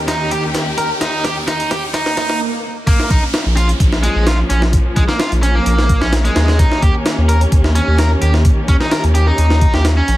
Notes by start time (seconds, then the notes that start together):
Already playing: D#2 D#3 C#4 G4, riser
0.08 D#4, snare, closed hi-hat
0.31 G4, closed hi-hat
0.55 snare, closed hi-hat
0.78 A#4, closed hi-hat
1.01 D#4, snare, closed hi-hat
1.24 G4, snare, closed hi-hat
1.47 D#4, snare, closed hi-hat
1.60 closed hi-hat
1.71 G4, snare, closed hi-hat
1.94 D#4, snare, closed hi-hat, swell
2.06 snare
2.17 D#4, snare, closed hi-hat
2.29 snare
2.87 F3 A#3 C#4, kick, closed hi-hat, downlifter
3.00 snare
3.10 A#1 D#4, kick, closed hi-hat
3.34 snare, closed hi-hat
3.46 A#1
3.57 F4, closed hi-hat
3.69 closed hi-hat
3.80 A#1, kick, closed hi-hat
3.92 snare
4.03 G#3, closed hi-hat
4.15 A#1
4.26 F4, snare, closed hi-hat
4.50 A#1 C#4, closed hi-hat
4.62 snare
4.73 kick, closed hi-hat
4.96 A#1 G#3, kick, closed hi-hat
5.08 A#3, snare
5.20 F4, snare, closed hi-hat
5.32 A#1, closed hi-hat
5.43 C#4, closed hi-hat
5.55 A#3
5.66 A#1, closed hi-hat
5.79 snare
5.89 kick, closed hi-hat
6.01 A#1 C#4, snare
6.13 snare, closed hi-hat
6.25 G#3, closed hi-hat
6.36 D#2, snare, closed hi-hat
6.48 snare
6.59 D#3 D#4 G4, kick, closed hi-hat
6.72 snare
6.82 D#2 G4, kick, closed hi-hat
7.06 snare, closed hi-hat
7.18 D#2
7.29 A#4, closed hi-hat
7.41 closed hi-hat
7.52 D#2, kick, closed hi-hat
7.64 snare
7.75 C#4, closed hi-hat
7.87 D#2
7.98 A#4, snare, closed hi-hat
8.22 D#2 G4, closed hi-hat
8.34 snare
8.45 kick, closed hi-hat
8.68 D#2 C#4, kick, closed hi-hat
8.80 D#4, snare
8.91 A#4, snare, closed hi-hat
9.04 D#2, closed hi-hat
9.14 G4, closed hi-hat
9.27 D#4
9.38 D#2, closed hi-hat
9.50 snare
9.61 kick, closed hi-hat
9.73 D#2 G4, snare
9.85 snare, closed hi-hat
9.97 C#4
10.08 A#1, closed hi-hat